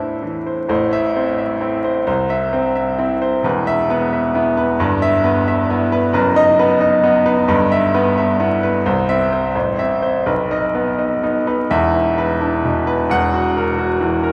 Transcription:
0.00 0.65 A2 medium
0.00 0.22 D4 soft
0.00 0.71 E4 medium
0.00 0.13 C5 medium
0.00 0.72 E5 medium
0.22 0.60 E3 medium
0.47 0.68 C5 medium
0.68 2.02 A1 medium
0.68 2.03 A2 medium
0.68 1.07 C5 medium
0.93 1.30 E5 medium
1.17 1.53 C4 medium
1.17 1.53 C5 medium
1.38 1.75 E5 medium
1.61 1.98 C4 medium
1.61 1.98 E4 medium
1.84 2.05 C5 medium
2.07 3.40 C2 medium
2.07 2.44 C5 medium
2.30 2.67 E5 medium
2.53 2.89 C4 medium
2.53 2.89 C5 medium
2.75 3.12 E5 medium
2.99 3.35 C4 medium
2.99 3.35 E4 medium
3.22 3.44 C5 medium
3.43 4.75 E1 medium
3.43 4.76 E2 medium
3.43 3.80 B4 medium
3.67 4.03 E5 loud
3.90 4.26 B3 medium
3.90 4.26 B4 medium
4.13 4.48 E5 medium
4.35 4.71 B3 medium
4.35 4.71 E4 medium
4.57 4.79 B4 medium
4.79 6.10 G1 medium
4.79 6.10 G2 medium
4.79 5.16 B4 medium
5.02 5.38 E5 loud
5.24 5.60 B3 medium
5.24 5.60 B4 medium
5.48 5.83 E5 medium
5.70 6.06 B3 medium
5.70 6.06 E4 medium
5.92 6.13 B4 medium
6.13 7.45 F#1 medium
6.13 7.45 F#2 medium
6.13 6.50 B4 medium
6.36 6.72 D#4 medium
6.36 6.72 D#5 loud
6.59 6.95 B3 medium
6.59 6.95 B4 medium
6.81 7.02 D#4 medium
6.81 7.17 D#5 medium
7.03 7.40 B3 medium
7.03 7.24 D#4 medium
7.26 7.49 D#4 medium
7.26 7.47 B4 medium
7.48 8.80 G1 medium
7.48 8.81 G2 medium
7.48 7.85 B4 medium
7.72 8.08 E5 loud
7.94 8.30 B3 medium
7.94 8.31 B4 medium
8.18 8.54 E5 medium
8.40 8.76 B3 medium
8.40 8.76 E4 medium
8.63 8.86 B4 medium
8.86 9.53 C2 medium
8.86 9.22 C5 medium
9.09 9.46 C4 medium
9.09 9.46 E5 medium
9.32 9.54 C5 medium
9.55 10.25 A1 medium
9.55 9.93 C5 medium
9.79 10.17 C4 medium
9.79 10.17 E5 medium
10.02 10.27 C5 medium
10.26 11.67 B1 medium
10.26 10.65 B4 medium
10.51 10.89 D#4 medium
10.51 10.90 D#5 medium
10.75 11.13 B3 medium
10.75 11.13 B4 medium
10.99 11.22 D#4 medium
10.99 11.37 D#5 medium
11.23 11.62 B3 medium
11.23 11.45 D#4 medium
11.47 11.71 D#4 medium
11.47 11.71 B4 medium
11.70 13.05 E1 medium
11.70 13.06 E2 loud
11.70 12.08 E5 loud
11.95 12.32 E4 medium
12.18 12.55 B4 medium
12.41 12.64 D4 medium
12.41 12.78 E4 medium
12.64 13.01 B2 medium
12.87 13.10 B4 medium
13.10 14.32 E1 medium
13.10 14.32 E2 medium
13.10 13.47 F#5 loud
13.34 13.70 F#4 medium
13.57 13.93 A#4 medium
13.79 14.15 F#4 medium
14.01 14.32 E3 medium
14.23 14.32 A#4 medium

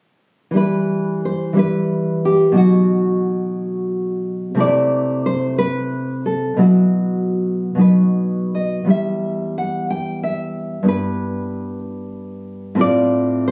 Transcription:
0.51 1.52 E3 soft
0.51 1.53 G3 soft
0.55 1.55 E4 soft
0.55 1.22 B4 medium
1.25 1.58 C5 medium
1.53 2.51 E3 soft
1.53 2.53 G3 soft
1.53 2.54 E4 soft
1.59 2.23 B4 medium
2.25 2.56 G4 medium
2.52 4.53 B2 soft
2.52 4.54 F#3 soft
2.52 4.55 D#4 soft
2.57 4.56 F#4 medium
4.55 6.56 C3 medium
4.55 6.56 A3 soft
4.55 6.57 E4 soft
4.60 5.24 D5 medium
5.26 5.58 C5 medium
5.58 6.23 B4 medium
6.26 6.60 A4 medium
6.56 7.74 B2 soft
6.56 7.76 F#3 soft
6.56 7.77 E4 soft
6.62 7.77 F#4 medium
7.75 8.84 B2 soft
7.75 8.85 F#3 soft
7.79 8.86 D#4 soft
7.79 8.52 B4 medium
8.55 8.89 D#5 medium
8.85 10.81 E2 soft
8.85 10.82 G3 soft
8.85 10.83 E4 soft
8.90 9.55 E5 medium
9.58 9.90 F#5 medium
9.90 10.23 G5 medium
10.23 10.85 E5 medium
10.83 12.74 G2 soft
10.83 12.75 B3 soft
10.87 12.76 E4 soft
10.87 11.79 B4 medium
12.75 13.51 A2 medium
12.75 13.51 C4 soft
12.75 13.51 F4 soft
12.81 13.45 D5 medium
13.48 13.51 C5 medium

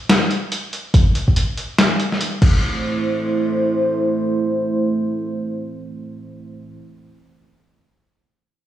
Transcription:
0.00 0.90 A3 medium
0.00 0.90 E4 medium
0.00 0.90 C5 medium
0.09 snare loud
0.09 closed hi-hat medium
0.31 closed hi-hat medium
0.52 closed hi-hat medium
0.73 closed hi-hat soft
0.94 kick loud
0.94 closed hi-hat medium
1.15 closed hi-hat soft
1.28 kick medium
1.36 closed hi-hat medium
1.57 closed hi-hat soft
1.78 snare loud
1.78 closed hi-hat medium
2.00 closed hi-hat soft
2.12 snare soft
2.21 closed hi-hat medium
2.42 6.77 A3 medium
2.42 6.77 E4 medium
2.42 6.77 C5 medium
2.42 kick loud
2.42 crash medium

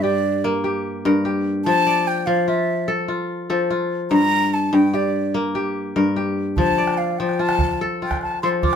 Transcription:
0.00 1.04 G2 medium
0.00 0.64 G4 medium
0.00 0.43 D5 medium
0.00 0.45 E5 medium
0.44 2.37 A#3 medium
0.64 1.25 G4 medium
1.05 1.71 G2 medium
1.05 2.33 A#4 medium
1.25 2.66 G4 medium
1.65 2.26 F3 medium
1.65 2.09 A5 loud
1.87 2.97 D5 medium
2.07 2.28 G5 loud
2.26 3.49 F3 medium
2.26 2.50 F5 medium
2.48 3.08 F4 medium
2.48 2.89 E5 medium
2.88 3.49 A4 medium
3.08 3.70 F4 medium
3.50 4.16 F3 medium
3.50 4.81 A4 medium
3.70 5.22 F4 medium
4.11 4.72 G2 loud
4.11 4.55 A#5 loud
4.54 4.76 A5 medium
4.73 5.95 G2 medium
4.73 4.96 G5 medium
4.93 5.55 G4 medium
4.93 5.35 D5 medium
5.34 7.27 A#3 medium
5.55 6.16 G4 medium
5.96 6.62 G2 medium
5.96 7.23 A#4 medium
6.16 7.58 G4 medium
6.57 7.19 F3 medium
6.57 6.99 A5 loud
6.57 calabash thump medium
6.78 7.89 D5 medium
6.87 calabash click soft
6.98 7.20 F5 medium
7.19 8.42 F3 medium
7.19 7.42 G5 medium
7.29 calabash click soft
7.39 8.02 F4 medium
7.39 7.81 A5 loud
7.49 calabash click medium
7.59 calabash thump medium
7.70 calabash click soft
7.81 8.43 A4 medium
8.02 8.63 F4 medium
8.02 8.21 G5 medium
8.11 calabash thump medium
8.11 calabash click soft
8.21 8.41 A5 medium
8.21 calabash click soft
8.31 calabash click soft
8.43 8.76 F3 medium
8.43 8.76 A4 medium
8.43 8.49 C6 loud
8.52 calabash click soft
8.63 8.76 F4 medium
8.63 8.76 D6 medium
8.63 calabash thump medium

